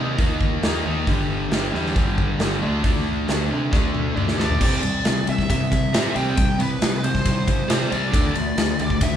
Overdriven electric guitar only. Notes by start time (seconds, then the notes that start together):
Already playing: D#3 A#3 D#4
0.19 D#3 A#3 D#4
0.63 D#3 A#3 D#4
0.85 D#3 A#3 D#4
1.07 G2 D3 G3
1.52 G2 D3 G3
1.73 G2 D3 G3
1.96 G2 D3 G3
2.40 G2 D3 G3
2.62 D3 A3 D4
2.83 D3 A3 D4
3.28 D3 A3 D4
3.50 D3 A3 D4
3.72 D3 A3 D4
4.15 D3 A3 D4
4.38 D3 A3 D4
4.59 C3 G3 C4
4.83 C3 G3
5.05 C3 G3
5.27 C3 G3
5.50 C3 G3
5.71 C3 G3
5.93 C3 G3 C4
6.14 C3 G3 C4
6.37 C3 G3
6.59 C3 G3
6.81 C3 G3
7.04 C3 G3
7.25 C3 G3
7.47 C3 G3
7.68 C3 G3 C4
7.90 C3 G3 C4
8.13 D3 A3 D4
8.35 D3 A3
8.57 D3 A3
8.80 D3 A3
9.02 D3 A3